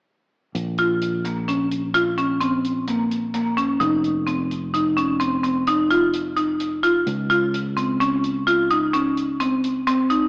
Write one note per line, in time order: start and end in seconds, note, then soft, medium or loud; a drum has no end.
0.55 3.77 A#1 medium
0.55 closed hi-hat medium
0.78 1.10 F4 medium
0.78 closed hi-hat soft
1.02 closed hi-hat medium
1.25 1.40 A#3 medium
1.25 closed hi-hat soft
1.48 1.79 C#4 medium
1.48 closed hi-hat medium
1.72 closed hi-hat medium
1.94 2.10 F4 medium
1.94 closed hi-hat medium
2.18 2.33 C#4 medium
2.18 closed hi-hat soft
2.40 2.72 C4 medium
2.40 closed hi-hat medium
2.65 closed hi-hat soft
2.88 3.19 A#3 medium
2.88 closed hi-hat medium
3.11 closed hi-hat soft
3.34 3.49 A#3 medium
3.34 closed hi-hat medium
3.57 3.73 C#4 medium
3.57 closed hi-hat soft
3.80 7.03 F1 medium
3.80 4.11 D#4 medium
3.80 closed hi-hat medium
4.04 closed hi-hat soft
4.27 4.58 C4 medium
4.27 closed hi-hat medium
4.51 closed hi-hat soft
4.74 4.89 D#4 medium
4.74 closed hi-hat medium
4.97 5.13 C#4 medium
4.97 closed hi-hat soft
5.20 5.36 C4 medium
5.20 closed hi-hat medium
5.44 5.59 C4 medium
5.44 closed hi-hat soft
5.67 5.83 D#4 medium
5.67 closed hi-hat medium
5.90 6.22 F4 medium
5.90 closed hi-hat soft
6.14 closed hi-hat medium
6.36 6.68 D#4 medium
6.36 closed hi-hat soft
6.60 closed hi-hat medium
6.83 6.99 F4 medium
6.83 closed hi-hat soft
7.06 10.29 C#2 medium
7.06 closed hi-hat medium
7.30 7.61 F4 medium
7.30 closed hi-hat soft
7.54 closed hi-hat medium
7.77 7.92 C4 medium
7.77 closed hi-hat soft
8.00 8.32 C#4 medium
8.00 closed hi-hat medium
8.24 closed hi-hat soft
8.47 8.63 F4 medium
8.47 closed hi-hat medium
8.70 8.86 D#4 medium
8.70 closed hi-hat soft
8.93 9.25 C#4 medium
8.93 closed hi-hat medium
9.17 closed hi-hat soft
9.40 9.72 C4 medium
9.40 closed hi-hat medium
9.64 closed hi-hat medium
9.87 10.03 C4 medium
9.87 closed hi-hat medium
10.10 10.26 D#4 medium
10.10 closed hi-hat soft